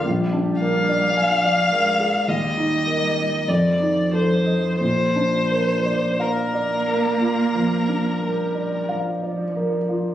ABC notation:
X:1
M:4/4
L:1/16
Q:1/4=45
K:Bb
V:1 name="Violin"
z2 f6 e4 d2 c2 | c4 B8 z4 |]
V:2 name="Grand piano"
B,,, D B d _a d B _A E,, E B e F,, E =A e | B,, D B d f d B F F, D B d f d B F |]
V:3 name="Cello" clef=bass
G,4 F,2 _A,2 G,4 F,4 | F,4 B,6 G,2 F,4 |]